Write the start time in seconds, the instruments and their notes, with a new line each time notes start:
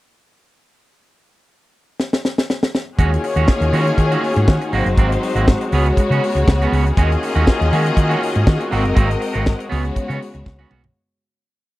2.00 snare
2.13 snare
2.25 snare
2.38 snare
2.50 snare
2.63 snare
2.75 snare
2.98 fingered electric bass D#2, string section D#3 A#3 C#4 F4 F#4 G#4 C#5, clean electric guitar G#3 C#4 F#4, kick, closed hi-hat
3.12 muted clean electric guitar stroke, closed hi-hat
3.23 muted clean electric guitar stroke, open hi-hat
3.36 fingered electric bass D#2, clean electric guitar G#3 C#4 F#4, closed hi-hat
3.48 muted clean electric guitar stroke, kick, snare
3.61 fingered electric bass D#2, muted clean electric guitar stroke, closed hi-hat
3.73 fingered electric bass D#3, clean electric guitar G#3 C#4 F#4, open hi-hat
3.87 muted clean electric guitar stroke, closed hi-hat
3.97 fingered electric bass D#3, muted clean electric guitar stroke, kick, closed hi-hat
4.12 clean electric guitar G#3 C#4 F#4, closed hi-hat
4.23 muted clean electric guitar stroke, open hi-hat
4.36 fingered electric bass G#2, muted clean electric guitar stroke, closed hi-hat
4.48 fingered electric bass D#3, kick, snare
4.61 muted clean electric guitar stroke, closed hi-hat
4.71 fingered electric bass G#1, string section F#3 G#3 C4 D#4 C5, clean electric guitar A#3 C4 F#4, open hi-hat
4.86 fingered electric bass F#1, muted clean electric guitar stroke, closed hi-hat
4.98 fingered electric bass G#1, clean electric guitar A#3 C4 F#4, kick, closed hi-hat
5.11 muted clean electric guitar stroke, closed hi-hat
5.22 muted clean electric guitar stroke, open hi-hat
5.35 fingered electric bass G#1, clean electric guitar A#3 C4 F#4, closed hi-hat
5.47 muted clean electric guitar stroke, kick, snare
5.61 muted clean electric guitar stroke, closed hi-hat
5.71 fingered electric bass C#2, string section C#3 G#3 B3 F#4 C#5, clean electric guitar B3 C#4 G#4, open hi-hat
5.86 muted clean electric guitar stroke, closed hi-hat
5.97 muted clean electric guitar stroke, kick, closed hi-hat
6.10 fingered electric bass C#3, clean electric guitar B3 C#4 F#4, closed hi-hat
6.24 muted clean electric guitar stroke, open hi-hat
6.35 fingered electric bass C#2, muted clean electric guitar stroke, closed hi-hat
6.48 fingered electric bass C#2, muted clean electric guitar stroke, kick, snare
6.62 clean electric guitar B3 C#4 F#4, closed hi-hat
6.72 fingered electric bass C#2, clean electric guitar B3 C#4 F#4, open hi-hat
6.86 closed hi-hat
6.96 fingered electric bass D#2, string section D#3 A#3 C#4 F4 F#4 G#4 D#5, clean electric guitar G#3 C#4 F#4, kick, closed hi-hat
7.11 muted clean electric guitar stroke, closed hi-hat
7.23 muted clean electric guitar stroke, open hi-hat
7.35 fingered electric bass D#2, clean electric guitar G#3 C#4 F#4, closed hi-hat
7.47 muted clean electric guitar stroke, kick, snare
7.60 fingered electric bass D#2, muted clean electric guitar stroke, closed hi-hat
7.72 fingered electric bass D#3, clean electric guitar G#3 C#4 F#4, open hi-hat
7.84 muted clean electric guitar stroke, closed hi-hat
7.96 fingered electric bass D#3, muted clean electric guitar stroke, kick, closed hi-hat
8.09 clean electric guitar G#3 C#4 F#4, closed hi-hat
8.21 muted clean electric guitar stroke, open hi-hat
8.35 fingered electric bass G#2, muted clean electric guitar stroke, closed hi-hat
8.47 fingered electric bass D#3, kick, snare
8.60 muted clean electric guitar stroke, closed hi-hat
8.71 fingered electric bass G#1, string section G#3 C4 A#4 D#5, clean electric guitar A#3 C4 F#4, open hi-hat
8.84 fingered electric bass F#1, muted clean electric guitar stroke, closed hi-hat
8.95 fingered electric bass G#1, clean electric guitar A#3 C4 F#4, kick, closed hi-hat
9.09 muted clean electric guitar stroke, closed hi-hat
9.20 muted clean electric guitar stroke, open hi-hat
9.34 fingered electric bass G#1, clean electric guitar A#3 C4 F#4, closed hi-hat
9.45 muted clean electric guitar stroke, kick, snare
9.59 muted clean electric guitar stroke, closed hi-hat
9.69 fingered electric bass C#2, string section C#3 G#3 B3 F#4 C#5, clean electric guitar B3 C#4 G#4, open hi-hat
9.83 muted clean electric guitar stroke, closed hi-hat
9.96 muted clean electric guitar stroke, kick, closed hi-hat
10.08 fingered electric bass C#3, clean electric guitar B3 C#4 F#4, closed hi-hat
10.20 muted clean electric guitar stroke, open hi-hat
10.34 fingered electric bass C#2, muted clean electric guitar stroke, closed hi-hat
10.46 fingered electric bass C#2, muted clean electric guitar stroke, kick, snare
10.59 clean electric guitar B3 C#4 F#4, high tom
10.70 fingered electric bass B1, clean electric guitar B3 C#4 F#4, mid tom
10.84 floor tom